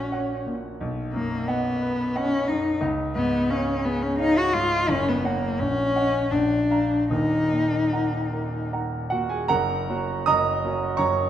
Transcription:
0.00 0.76 A#1 medium
0.00 0.46 A#2 soft
0.00 0.46 C#4 medium
0.00 0.32 F#4 soft
0.00 0.12 C#5 soft
0.00 0.12 F#5 soft
0.12 0.42 C#5 medium
0.12 0.43 F#5 medium
0.46 0.80 A#2 soft
0.81 2.78 B1 medium
1.13 1.68 F#2 medium
1.13 1.50 A#3 medium
1.47 2.18 B3 medium
1.47 1.78 D#5 medium
1.47 1.78 F#5 medium
1.82 2.35 B4 medium
2.15 2.50 C#4 loud
2.15 2.45 D#5 soft
2.15 2.46 F#5 medium
2.49 2.83 F#2 medium
2.49 2.82 D#4 medium
2.81 4.85 C#2 medium
3.15 3.71 G#2 medium
3.15 3.52 B3 loud
3.50 3.86 C#4 medium
3.50 3.81 C#5 medium
3.50 3.82 F5 medium
3.85 4.04 B3 medium
3.85 4.41 G#4 medium
4.02 4.19 C#4 medium
4.19 4.39 D#4 loud
4.19 4.51 C#5 medium
4.19 4.51 F5 medium
4.38 4.55 F#4 loud
4.53 4.89 G#2 medium
4.53 4.91 F4 loud
4.88 5.57 F#1 medium
4.88 5.10 C#4 loud
5.09 5.27 B3 medium
5.24 5.61 A#3 medium
5.24 5.56 C#5 medium
5.24 5.56 F#5 medium
5.59 6.30 A#1 medium
5.59 6.32 C#4 loud
5.95 6.28 D#5 soft
5.95 6.29 F#5 medium
6.31 7.09 A#1 medium
6.31 7.10 D4 medium
6.71 7.07 F5 soft
6.71 7.07 A#5 medium
7.10 9.45 D#1 medium
7.10 9.45 D#2 medium
7.10 8.68 D#4 medium
7.51 8.16 A#2 soft
7.93 8.29 F#5 soft
7.93 8.29 A#5 soft
8.33 8.96 A#4 soft
8.73 9.08 F#5 soft
8.73 9.08 A#5 soft
9.10 9.50 A#2 soft
9.10 9.29 F#4 medium
9.10 9.30 F#5 medium
9.29 9.48 G#4 medium
9.29 9.49 G#5 medium
9.48 9.87 F#1 medium
9.48 9.88 F#2 medium
9.48 10.24 A#4 medium
9.48 10.24 F#5 medium
9.48 10.26 A#5 loud
9.89 10.24 A#3 soft
9.89 10.24 C#4 soft
9.89 10.25 F#4 medium
10.26 10.63 F#1 medium
10.26 10.63 F#2 medium
10.26 10.95 D#5 medium
10.26 10.95 A#5 medium
10.26 10.98 D#6 loud
10.64 10.95 A#3 soft
10.64 10.96 C#4 medium
10.64 10.96 F#4 medium
10.97 11.30 F#1 medium
10.97 11.30 F#2 medium
10.97 11.30 C#5 medium
10.97 11.30 A#5 medium
10.97 11.30 C#6 medium

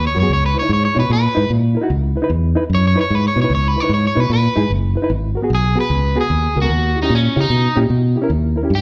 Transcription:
0.07 0.18 C#5 medium
0.15 0.25 F#2 medium
0.15 0.19 F#4 medium
0.15 0.19 A#4 medium
0.20 0.29 B3 medium
0.20 0.29 F#4 medium
0.20 0.29 G#4 medium
0.20 0.31 C#5 medium
0.29 0.55 C#2 medium
0.29 0.44 C#5 medium
0.46 0.57 B4 medium
0.55 0.59 E4 medium
0.55 0.60 B4 medium
0.59 0.69 D#4 medium
0.59 0.69 E4 medium
0.59 0.71 C#5 medium
0.59 0.69 C#5 medium
0.69 0.86 G#2 medium
0.69 0.84 C#5 medium
0.85 0.97 C#5 medium
0.95 1.05 B2 medium
0.95 1.02 D#4 medium
0.95 1.02 E4 medium
0.95 1.03 C#5 medium
1.00 1.11 B4 medium
1.10 1.26 A#2 medium
1.10 1.50 B4 medium
1.35 1.45 G#2 medium
1.35 1.42 D#4 medium
1.35 1.43 E4 medium
1.35 1.43 B4 medium
1.50 1.75 A#2 medium
1.75 1.79 E4 medium
1.75 1.80 A#4 medium
1.82 1.89 D#4 medium
1.82 1.89 E4 medium
1.82 1.90 F#4 medium
1.90 2.15 C#2 medium
2.16 2.19 E4 medium
2.16 2.20 B4 medium
2.22 2.29 D#4 medium
2.22 2.29 E4 medium
2.22 2.30 B4 medium
2.30 2.55 E2 medium
2.55 2.62 D#4 medium
2.55 2.63 E4 medium
2.55 2.63 B4 medium
2.70 2.95 F#2 medium
2.75 2.85 C#5 medium
2.87 2.98 C#5 medium
2.96 3.03 D#4 medium
2.96 3.03 E4 medium
2.96 3.04 B4 medium
3.01 3.15 C#5 medium
3.10 3.27 G#2 medium
3.15 3.25 B4 medium
3.28 3.39 C#5 medium
3.36 3.45 B2 medium
3.36 3.39 E4 medium
3.36 3.40 B4 medium
3.42 3.50 D#4 medium
3.42 3.50 E4 medium
3.42 3.50 B4 medium
3.42 3.52 C#5 medium
3.50 3.75 C#2 medium
3.55 3.68 C#5 medium
3.68 3.80 B4 medium
3.76 3.80 E4 medium
3.76 3.80 B4 medium
3.80 3.90 D#4 medium
3.80 3.90 E4 medium
3.80 3.90 B4 medium
3.80 3.91 C#5 medium
3.89 4.06 G#2 medium
3.94 4.05 C#5 medium
4.07 4.20 C#5 medium
4.15 4.25 B2 medium
4.15 4.23 D#4 medium
4.15 4.23 E4 medium
4.15 4.23 B4 medium
4.20 4.31 B4 medium
4.30 4.47 A#2 medium
4.30 4.71 B4 loud
4.55 4.65 G#2 medium
4.55 4.63 D#4 medium
4.55 4.63 E4 medium
4.55 4.64 G#4 medium
4.70 4.95 F#1 medium
4.95 4.99 E4 medium
4.95 5.00 B4 loud
5.02 5.09 D#4 medium
5.02 5.10 E4 medium
5.02 5.10 B4 medium
5.10 5.35 G#1 loud
5.35 5.39 F#4 medium
5.35 5.40 A#4 medium
5.42 5.49 B3 medium
5.42 5.50 F#4 medium
5.42 5.50 G#4 medium
5.50 5.75 B1 medium
5.55 5.78 G#4 medium
5.76 5.83 B3 medium
5.76 5.83 F#4 medium
5.76 5.83 G#4 medium
5.80 6.17 B4 medium
5.90 6.15 C#2 medium
6.16 6.23 B3 medium
6.16 6.23 F#4 medium
6.16 6.24 G#4 medium
6.21 6.58 G#4 medium
6.30 6.47 D#2 medium
6.55 6.65 C#2 medium
6.55 6.59 F#4 medium
6.55 6.60 A#4 medium
6.62 6.69 B3 medium
6.62 6.98 F#4 medium
6.62 6.70 F#4 soft
6.62 6.70 A#4 medium
6.69 6.95 D#2 medium
6.96 7.00 E4 medium
6.96 7.00 G4 medium
7.02 7.10 C#4 medium
7.02 7.13 D#4 medium
7.02 7.10 E4 medium
7.02 7.11 G4 medium
7.10 7.27 A#2 medium
7.15 7.38 C#4 medium
7.36 7.45 C#3 medium
7.36 7.43 C#4 medium
7.36 7.43 E4 medium
7.36 7.44 G4 medium
7.41 7.78 D#4 loud
7.50 7.67 B2 medium
7.76 7.85 A#2 medium
7.76 7.83 C#4 medium
7.76 7.83 E4 medium
7.76 7.84 G4 medium
7.90 8.15 B2 medium
8.16 8.20 E4 medium
8.16 8.20 G4 loud
8.22 8.29 C#4 medium
8.22 8.30 E4 medium
8.22 8.30 A#4 medium
8.30 8.55 D#2 medium
8.56 8.60 E4 medium
8.56 8.60 A#4 medium
8.63 8.70 C#4 medium
8.63 8.70 E4 medium
8.63 8.71 G4 medium
8.70 8.81 G2 medium
8.75 8.81 G4 medium

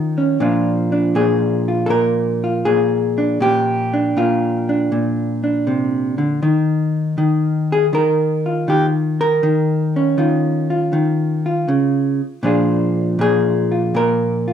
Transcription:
0.00 0.37 D#3 medium
0.00 0.40 F3 medium
0.00 0.17 C#4 soft
0.00 0.42 F4 soft
0.18 0.38 C#4 soft
0.40 1.15 A#2 medium
0.40 6.42 F3 soft
0.40 0.92 D4 soft
0.40 1.68 F4 soft
0.92 3.17 D4 soft
1.15 1.89 A#2 medium
1.15 1.86 G#4 medium
1.68 2.43 F4 soft
1.86 2.65 A#2 medium
1.86 1.90 A4 medium
1.90 2.65 A#4 medium
2.44 3.45 F4 soft
2.65 3.38 A#2 medium
2.65 3.40 G#4 medium
3.18 3.38 D4 soft
3.40 4.16 A#2 medium
3.40 4.91 G4 medium
3.93 4.68 D4 soft
4.17 4.91 A#2 medium
4.17 6.42 F4 medium
4.69 5.42 D4 soft
4.92 6.39 A#2 medium
5.44 6.39 D4 soft
5.67 6.18 C3 medium
6.18 6.41 D3 medium
6.43 7.17 D#3 medium
7.18 7.92 D#3 medium
7.72 7.85 G#4 medium
7.93 8.67 D#3 medium
7.93 8.68 A#4 loud
8.46 9.46 F4 soft
8.68 9.40 D#3 medium
8.68 8.86 G4 medium
9.21 12.21 A#4 medium
9.43 10.17 D#3 medium
9.96 12.42 C#4 soft
10.18 10.92 D#3 medium
10.18 10.70 F4 soft
10.70 11.45 F4 soft
10.93 11.68 D#3 medium
11.46 12.45 F4 soft
11.68 12.20 C#3 medium
12.43 13.18 A#2 medium
12.43 14.53 F3 medium
12.43 14.53 D4 medium
12.43 13.71 F4 soft
12.43 13.20 G#4 medium
13.19 13.93 A#2 medium
13.19 13.95 G#4 medium
13.72 14.46 F4 soft
13.95 14.53 A#2 medium
13.95 14.53 A#4 loud
14.48 14.53 F4 soft

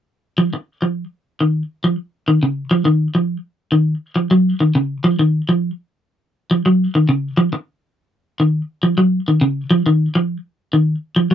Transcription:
0.38 0.49 F3 medium
0.54 muted clean electric guitar stroke medium
0.82 1.04 F3 medium
1.41 1.62 D#3 medium
1.84 1.95 F3 medium
2.28 2.38 D#3 medium
2.43 2.64 C#3 medium
2.71 2.82 F3 medium
2.85 3.07 D#3 medium
3.15 3.36 F3 medium
3.72 3.94 D#3 medium
4.16 4.27 F3 medium
4.31 4.53 F#3 medium
4.60 4.71 D#3 medium
4.75 4.97 C#3 medium
5.04 5.15 F3 medium
5.19 5.41 D#3 medium
5.49 5.70 F3 medium
6.51 6.62 F3 medium
6.66 6.87 F#3 medium
6.95 7.05 D#3 medium
7.09 7.30 C#3 medium
7.37 7.48 F3 medium
7.53 muted clean electric guitar stroke medium
8.40 8.61 D#3 medium
8.83 8.94 F3 medium
8.98 9.19 F#3 medium
9.28 9.38 D#3 medium
9.41 9.63 C#3 medium
9.71 9.82 F3 medium
9.86 10.07 D#3 medium
10.15 10.36 F3 medium
10.73 10.95 D#3 medium
11.16 11.27 F3 medium
11.31 11.34 F#3 medium

